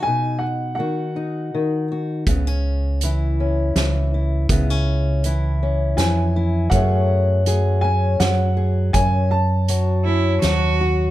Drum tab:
HH |------|x-x-x-|x-x-x-|x-x-x-|
SD |------|----o-|----o-|----o-|
BD |------|o-----|o-----|o-----|

HH |x-x-x-|
SD |----o-|
BD |o-----|